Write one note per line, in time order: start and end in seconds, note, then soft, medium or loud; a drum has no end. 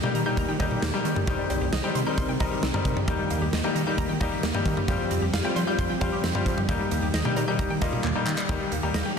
0.00 1.26 D#3 medium
0.00 4.84 G3 medium
0.00 0.18 G3 medium
0.00 1.26 A#3 medium
0.00 0.18 A#3 medium
0.00 0.18 D#4 medium
0.00 1.24 G4 medium
0.00 0.18 G4 medium
0.00 0.14 G5 medium
0.00 mid tom medium
0.15 0.23 D#3 loud
0.15 0.25 A#5 medium
0.15 closed hi-hat medium
0.26 0.48 G3 medium
0.26 0.48 A#3 medium
0.26 0.48 D#4 medium
0.26 0.48 G4 medium
0.26 0.36 G6 medium
0.37 0.46 D#2 loud
0.37 0.47 A#5 loud
0.37 kick medium
0.37 closed hi-hat medium
0.48 0.57 D#3 medium
0.48 0.59 G5 medium
0.60 0.68 D#2 loud
0.60 0.82 G3 medium
0.60 0.82 A#3 medium
0.60 0.82 D#4 medium
0.60 0.82 G4 medium
0.60 0.70 D#5 medium
0.60 kick loud
0.60 closed hi-hat medium
0.60 cowbell medium
0.71 0.81 G4 medium
0.71 mid tom medium
0.82 0.91 D#2 loud
0.82 0.92 A#3 medium
0.82 snare loud
0.82 closed hi-hat medium
0.94 1.04 G3 medium
0.94 1.16 G3 medium
0.94 1.16 A#3 medium
0.94 1.16 D#4 medium
0.94 1.16 G4 loud
1.05 1.15 D#3 medium
1.05 1.13 D#3 loud
1.05 closed hi-hat medium
1.16 1.26 G3 medium
1.16 mid tom medium
1.27 1.36 C2 loud
1.27 4.85 D#3 medium
1.27 1.38 D#3 loud
1.27 1.65 G3 medium
1.27 3.06 C4 medium
1.27 1.65 C4 medium
1.27 1.65 D#4 medium
1.27 8.45 G4 medium
1.27 1.65 G4 loud
1.27 kick loud
1.27 closed hi-hat medium
1.39 1.49 G3 medium
1.50 1.58 C2 loud
1.50 1.60 C4 medium
1.50 closed hi-hat medium
1.50 cowbell medium
1.61 1.70 C2 loud
1.61 1.71 G4 medium
1.72 1.81 C2 loud
1.72 1.83 D#5 loud
1.72 snare loud
1.72 closed hi-hat medium
1.84 1.99 G3 medium
1.84 1.99 C4 medium
1.84 1.99 D#4 medium
1.84 1.99 G4 loud
1.84 1.94 G5 medium
1.95 2.04 C3 loud
1.95 2.05 C6 medium
1.95 closed hi-hat medium
2.06 2.29 G3 medium
2.06 2.29 C4 medium
2.06 2.29 D#4 medium
2.06 2.29 A#4 medium
2.06 2.17 G6 medium
2.18 2.26 C2 loud
2.18 2.28 C6 loud
2.18 kick medium
2.18 closed hi-hat medium
2.29 2.37 C3 medium
2.29 2.39 G5 medium
2.40 2.49 C2 loud
2.40 2.62 G3 medium
2.40 2.63 C4 medium
2.40 2.62 D#4 medium
2.40 2.63 A#4 loud
2.40 2.50 D#5 medium
2.40 kick medium
2.40 closed hi-hat medium
2.51 2.62 G4 medium
2.63 2.71 C2 loud
2.63 2.73 C4 medium
2.63 snare loud
2.63 closed hi-hat medium
2.74 2.84 G3 medium
2.74 2.96 G3 medium
2.74 2.96 C4 medium
2.74 2.96 D#4 medium
2.74 2.96 A#4 loud
2.74 mid tom loud
2.85 2.94 C3 loud
2.85 2.95 D#3 medium
2.85 kick medium
2.85 closed hi-hat medium
2.97 3.07 G3 medium
2.97 mid tom medium
3.08 3.16 D#2 loud
3.08 3.18 D#3 loud
3.08 3.45 G3 medium
3.08 3.45 A#3 medium
3.08 4.87 A#3 medium
3.08 3.45 D#4 medium
3.08 3.45 G4 loud
3.08 kick loud
3.08 closed hi-hat medium
3.19 3.29 G3 medium
3.30 3.39 D#2 loud
3.30 3.41 A#3 medium
3.30 closed hi-hat medium
3.42 3.50 D#2 loud
3.42 3.52 G4 medium
3.53 3.61 D#2 loud
3.53 3.63 D#5 loud
3.53 snare loud
3.53 closed hi-hat medium
3.64 3.79 G3 medium
3.64 3.79 A#3 medium
3.64 3.79 D#4 medium
3.64 3.79 G4 medium
3.64 3.74 G5 medium
3.75 3.84 D#3 medium
3.75 3.86 A#5 medium
3.75 closed hi-hat medium
3.87 4.09 G3 medium
3.87 4.09 A#3 medium
3.87 4.09 D#4 medium
3.87 4.09 G4 medium
3.87 3.97 G6 medium
3.98 4.07 D#2 loud
3.98 4.08 A#5 loud
3.98 kick medium
3.98 closed hi-hat medium
4.09 4.18 D#3 medium
4.09 4.19 G5 medium
4.20 4.29 D#2 loud
4.20 4.43 G3 medium
4.20 4.43 A#3 medium
4.20 4.43 D#4 medium
4.20 4.43 G4 medium
4.20 4.31 D#5 medium
4.20 kick loud
4.20 closed hi-hat medium
4.32 4.42 G4 medium
4.43 4.52 D#2 loud
4.43 4.53 A#3 medium
4.43 snare loud
4.43 closed hi-hat medium
4.54 4.65 G3 medium
4.54 4.77 G3 medium
4.54 4.77 A#3 medium
4.54 4.77 D#4 medium
4.54 4.77 G4 medium
4.54 mid tom loud
4.66 4.74 D#3 loud
4.66 4.76 D#3 medium
4.66 kick medium
4.66 closed hi-hat medium
4.77 4.87 G3 medium
4.77 mid tom medium
4.88 4.97 F2 loud
4.88 4.98 F3 loud
4.88 6.67 F3 medium
4.88 8.46 G3 medium
4.88 5.26 G3 medium
4.88 6.67 C4 medium
4.88 5.26 C4 medium
4.88 5.26 F4 medium
4.88 5.26 G4 loud
4.88 kick loud
4.88 closed hi-hat medium
4.99 5.10 G3 medium
5.11 5.19 F2 loud
5.11 5.21 C4 medium
5.11 closed hi-hat medium
5.22 5.31 F2 loud
5.22 5.32 G4 medium
5.33 5.42 F2 loud
5.33 5.44 F5 medium
5.33 snare loud
5.33 closed hi-hat medium
5.45 5.60 G3 medium
5.45 5.60 C4 medium
5.45 5.60 F4 medium
5.45 5.60 G4 medium
5.45 5.55 G5 medium
5.56 5.65 F3 medium
5.56 5.66 C6 medium
5.56 closed hi-hat medium
5.56 cowbell medium
5.67 5.90 G3 medium
5.67 5.90 C4 medium
5.67 5.90 F4 medium
5.67 5.90 G4 medium
5.67 5.77 G6 medium
5.78 5.87 F2 loud
5.78 5.89 C6 loud
5.78 kick medium
5.78 closed hi-hat medium
5.90 5.98 F3 medium
5.90 6.00 G5 medium
6.01 6.10 F2 loud
6.01 6.23 G3 medium
6.01 6.23 C4 medium
6.01 6.23 F4 medium
6.01 6.23 G4 loud
6.01 6.11 F5 medium
6.01 kick medium
6.01 closed hi-hat medium
6.01 cowbell medium
6.12 6.22 G4 medium
6.24 6.32 F2 loud
6.24 6.34 C4 medium
6.24 snare loud
6.24 closed hi-hat medium
6.35 6.45 G3 medium
6.35 6.57 G3 medium
6.35 6.57 C4 medium
6.35 6.57 F4 medium
6.35 6.57 G4 medium
6.35 mid tom loud
6.46 6.55 F3 loud
6.46 6.56 F3 medium
6.46 kick medium
6.46 closed hi-hat medium
6.57 6.68 G3 medium
6.57 mid tom medium
6.69 6.77 D#2 loud
6.69 6.79 D#3 loud
6.69 8.47 D#3 medium
6.69 7.06 G3 medium
6.69 8.47 A#3 medium
6.69 7.06 A#3 medium
6.69 7.06 D#4 medium
6.69 7.06 G4 loud
6.69 kick loud
6.69 closed hi-hat medium
6.80 6.90 G3 medium
6.91 7.00 D#2 loud
6.91 7.02 A#3 medium
6.91 closed hi-hat medium
7.03 7.11 D#2 loud
7.03 7.13 G4 medium
7.14 7.22 D#2 loud
7.14 7.24 D#5 medium
7.14 snare loud
7.14 closed hi-hat medium
7.25 7.40 G3 medium
7.25 7.40 A#3 medium
7.25 7.40 D#4 medium
7.25 7.40 G4 medium
7.25 7.35 G5 medium
7.25 mid tom medium
7.36 7.45 D#3 medium
7.36 7.47 A#5 medium
7.36 closed hi-hat medium
7.36 cowbell medium
7.48 7.70 G3 medium
7.48 7.70 A#3 medium
7.48 7.70 D#4 medium
7.48 7.70 G4 medium
7.48 7.58 G6 medium
7.59 7.68 D#2 loud
7.59 7.69 A#5 loud
7.59 kick medium
7.59 closed hi-hat medium
7.70 7.79 D#3 medium
7.70 7.80 G5 medium
7.81 7.90 D#2 loud
7.81 8.04 G3 medium
7.81 8.04 A#3 medium
7.81 8.04 D#4 medium
7.81 8.04 F4 loud
7.81 7.92 D#5 medium
7.81 kick loud
7.81 closed hi-hat medium
7.93 8.03 G4 medium
7.93 mid tom medium
8.04 8.13 D#2 loud
8.04 8.14 A#3 medium
8.04 clap medium
8.15 8.38 G3 medium
8.15 8.26 G3 medium
8.15 8.38 A#3 medium
8.15 8.38 D#4 medium
8.15 8.38 G4 loud
8.27 8.35 D#3 loud
8.27 8.37 D#3 medium
8.27 clap loud
8.38 8.48 G3 medium
8.38 clap loud
8.49 8.58 D#2 loud
8.49 8.59 D#3 medium
8.49 9.19 D#3 medium
8.49 8.72 G3 medium
8.49 9.19 G3 medium
8.49 8.72 A#3 medium
8.49 9.19 A#3 medium
8.49 8.71 D#4 medium
8.49 8.72 G4 medium
8.49 9.19 G4 medium
8.49 kick loud
8.49 closed hi-hat medium
8.61 8.71 G3 medium
8.72 8.80 D#2 medium
8.72 8.82 A#3 medium
8.72 closed hi-hat medium
8.83 8.92 D#2 loud
8.83 9.05 G3 medium
8.83 9.05 A#3 medium
8.83 9.05 D#4 medium
8.83 8.93 G4 medium
8.83 9.05 G4 medium
8.94 9.03 D#2 loud
8.94 9.04 D#5 medium
8.94 snare loud
8.94 closed hi-hat medium
9.06 9.16 G5 medium